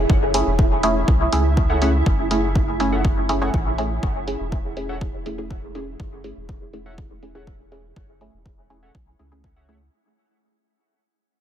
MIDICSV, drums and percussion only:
0, 0, Header, 1, 2, 480
1, 0, Start_track
1, 0, Key_signature, 3, "minor"
1, 0, Tempo, 491803
1, 94, Time_signature, 4, 2, 24, 8
1, 11130, End_track
2, 0, Start_track
2, 0, Title_t, "Drums"
2, 94, Note_on_c, 9, 36, 119
2, 191, Note_off_c, 9, 36, 0
2, 333, Note_on_c, 9, 46, 82
2, 431, Note_off_c, 9, 46, 0
2, 574, Note_on_c, 9, 36, 120
2, 671, Note_off_c, 9, 36, 0
2, 813, Note_on_c, 9, 46, 69
2, 911, Note_off_c, 9, 46, 0
2, 1054, Note_on_c, 9, 36, 112
2, 1151, Note_off_c, 9, 36, 0
2, 1293, Note_on_c, 9, 46, 80
2, 1391, Note_off_c, 9, 46, 0
2, 1534, Note_on_c, 9, 36, 119
2, 1631, Note_off_c, 9, 36, 0
2, 1773, Note_on_c, 9, 46, 70
2, 1871, Note_off_c, 9, 46, 0
2, 2014, Note_on_c, 9, 36, 113
2, 2111, Note_off_c, 9, 36, 0
2, 2253, Note_on_c, 9, 46, 76
2, 2351, Note_off_c, 9, 46, 0
2, 2493, Note_on_c, 9, 36, 116
2, 2591, Note_off_c, 9, 36, 0
2, 2733, Note_on_c, 9, 46, 65
2, 2830, Note_off_c, 9, 46, 0
2, 2973, Note_on_c, 9, 36, 107
2, 3071, Note_off_c, 9, 36, 0
2, 3213, Note_on_c, 9, 46, 80
2, 3311, Note_off_c, 9, 46, 0
2, 3453, Note_on_c, 9, 36, 114
2, 3551, Note_off_c, 9, 36, 0
2, 3693, Note_on_c, 9, 46, 68
2, 3791, Note_off_c, 9, 46, 0
2, 3933, Note_on_c, 9, 36, 107
2, 4031, Note_off_c, 9, 36, 0
2, 4173, Note_on_c, 9, 46, 76
2, 4271, Note_off_c, 9, 46, 0
2, 4413, Note_on_c, 9, 36, 112
2, 4511, Note_off_c, 9, 36, 0
2, 4653, Note_on_c, 9, 46, 63
2, 4751, Note_off_c, 9, 46, 0
2, 4893, Note_on_c, 9, 36, 104
2, 4991, Note_off_c, 9, 36, 0
2, 5133, Note_on_c, 9, 46, 77
2, 5231, Note_off_c, 9, 46, 0
2, 5373, Note_on_c, 9, 36, 109
2, 5471, Note_off_c, 9, 36, 0
2, 5612, Note_on_c, 9, 46, 65
2, 5710, Note_off_c, 9, 46, 0
2, 5853, Note_on_c, 9, 36, 106
2, 5951, Note_off_c, 9, 36, 0
2, 6092, Note_on_c, 9, 46, 77
2, 6190, Note_off_c, 9, 46, 0
2, 6333, Note_on_c, 9, 36, 109
2, 6431, Note_off_c, 9, 36, 0
2, 6573, Note_on_c, 9, 46, 61
2, 6670, Note_off_c, 9, 46, 0
2, 6813, Note_on_c, 9, 36, 104
2, 6911, Note_off_c, 9, 36, 0
2, 7053, Note_on_c, 9, 46, 74
2, 7150, Note_off_c, 9, 46, 0
2, 7293, Note_on_c, 9, 36, 103
2, 7391, Note_off_c, 9, 36, 0
2, 7533, Note_on_c, 9, 46, 64
2, 7631, Note_off_c, 9, 46, 0
2, 7773, Note_on_c, 9, 36, 112
2, 7870, Note_off_c, 9, 36, 0
2, 8013, Note_on_c, 9, 46, 77
2, 8111, Note_off_c, 9, 46, 0
2, 8253, Note_on_c, 9, 36, 108
2, 8351, Note_off_c, 9, 36, 0
2, 8493, Note_on_c, 9, 46, 67
2, 8591, Note_off_c, 9, 46, 0
2, 8614, Note_on_c, 9, 46, 31
2, 8711, Note_off_c, 9, 46, 0
2, 8733, Note_on_c, 9, 36, 105
2, 8831, Note_off_c, 9, 36, 0
2, 8974, Note_on_c, 9, 46, 76
2, 9071, Note_off_c, 9, 46, 0
2, 9213, Note_on_c, 9, 36, 107
2, 9311, Note_off_c, 9, 36, 0
2, 9454, Note_on_c, 9, 46, 65
2, 9551, Note_off_c, 9, 46, 0
2, 11130, End_track
0, 0, End_of_file